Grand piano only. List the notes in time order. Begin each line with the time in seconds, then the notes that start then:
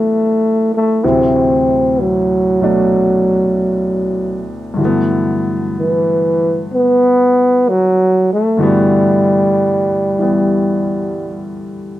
Already playing: A2 C3 E3 F#3 G3 A3 B3 D4
1.04 D2 A2 C3 E3 F#3
2.61 B2 F#3 A3 D4
4.74 G2 D3
4.78 E3 F#3
4.83 A3 B3
8.57 G2 D3 E3 F#4
8.62 A3 B3
10.19 E3 G3 B3